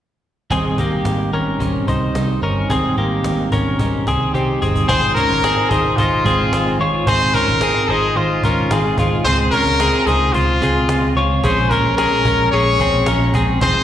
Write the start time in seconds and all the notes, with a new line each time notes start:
0.50 G#1 G#2 D#3 G3 C4 D#4 G#4, cajon bass
0.78 G#1 G3 A#3 C4 D#4 G4, cajon bass
1.05 G#1, cajon slap
1.32 G#1 C#4 A#4, cajon slap
1.60 G#1 D#3 G3 C4 D#4, cajon bass
1.88 C2 D#4 C5, cajon bass
2.15 C2 D#3 G3 C4 D#4, cajon slap
2.42 G1 C#4 A#4, cajon slap
2.69 G#1 G#2 D#3 G3 C4 G#4, cajon bass
2.73 D#4
2.97 G#1 A#3 G4, cajon slap
3.24 G#1, cajon slap
3.52 G#1 C#4 A#4, cajon bass
3.79 G#1 D#3 G3 C4 D#4, cajon bass
4.07 C2 C4 G#4, cajon bass
4.33 C2 D#3 G3 C4 D#4 G4, cajon slap
4.62 G1 C4 G#4, cajon bass
4.76 cajon bass
4.88 G#1 G#3 C4 D#4 F4 G#4 C5, cajon bass
5.15 C#4 A#4, cajon bass
5.29 G#1 D#4 F4 C5
5.44 C4 G#4, cajon slap
5.57 D#4 F4 C5
5.69 G#1 D#4 G#4 C5, cajon bass
5.97 G#1 D#4 F4 C5, cajon bass
6.24 G#1 G#3 C4 D#4 F4 G#4 C5, cajon bass
6.52 G#1 G#3 D#4 F4 C5, cajon slap
6.79 G#1 G#3 D#4 F4 C5 C#5
7.06 G#1 G#3 C4 D#4 F4 G#4 C5, cajon bass
7.34 C#4 A#4, cajon bass
7.47 G#1 D#4 F4 C5
7.61 C4 G#4, cajon slap
7.75 D#4 F4 C5
7.89 G#1 D#4 G#4 C5, cajon slap
8.15 G#1 D#4 F4 C5, cajon slap
8.43 G#1 G#3 C#4 D#4 F4 A#4 C5, cajon bass
8.71 G#1 G#3 C4 D#4 F4 G#4 C5, cajon slap
8.98 G#1 G#3 D#4 F4 C5, cajon bass
9.25 C#2 C#3 G#3 C4 F4 G#4 C5, cajon bass
9.51 C#4 A#4, cajon bass
9.66 C#2 C4 F4 G#4
9.80 C4 G#4, cajon slap
9.93 C4 F4 G#4
10.06 C#2 D#4 G#4 C5, cajon bass
10.33 C#2 F4 C5, cajon bass
10.61 C#2 G#3 C4 F4 G#4, cajon bass
10.88 C#2 G#3 C4 F4 G#4, cajon slap
11.15 C#2 G#3 C4 F4 G#4 C#5
11.43 A#1 A#2 F3 G#3 C#4 G#4 C5, cajon bass
11.70 C#4 A#4, cajon bass
11.83 A#1 G#3 C#4 G#4
11.97 C#4 G#4 A#4, cajon slap
12.11 G#3 C#4 G#4
12.25 A#1 C#4 A#4, cajon bass
12.52 A#1 C#4 G#4 C#5, cajon slap
12.79 A#1 F3 G#3 C4 C#4 G#4, cajon bass
13.06 A#1 F3 G#3 C#4 G#4 A#4, cajon slap
13.34 A#1 F3 G#3 C4 C#4 G#4, cajon bass
13.61 G#1 G#3 C4 D#4 F4 G#4 C5, cajon bass